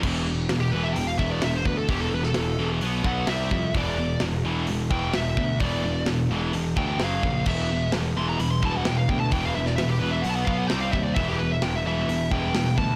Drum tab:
CC |x---------------|----------------|----------------|----------------|
HH |----o---o---o---|o---o---o---o---|o---o---o---o---|o---o---o---o---|
SD |----o-------o---|---oo-------o---|----o-------o---|----o-------o---|
BD |o---------o---o-|o---------o---o-|o---------o---o-|o---------o---o-|

CC |x---------------|----------------|----------------|
HH |----o---o---o---|o---o---o---o---|o---o---o---o---|
SD |----o-------o---|---oo-------o---|----o-------o---|
BD |o---------o---o-|o---------o---o-|o---------o---o-|